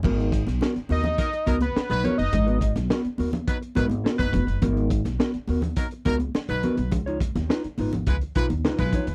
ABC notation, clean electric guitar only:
X:1
M:4/4
L:1/16
Q:1/4=105
K:G#dor
V:1 name="Clean electric guitar"
[B,FA]2 z2 [B,FA] z [B,FA] z3 [B,FA] z3 [B,FA] z | z [B,FB] z2 [B,FA] z [B,FA] z3 [B,FA] z [B,FA] z [B,FB] z | [B,FA]2 z2 [B,FA] z [B,FA] z3 [B,FA] z3 [B,FA] z | z [DEc] z2 [DEB] z [DEB] z3 [DEB] z [DEB] z [DEc] z |]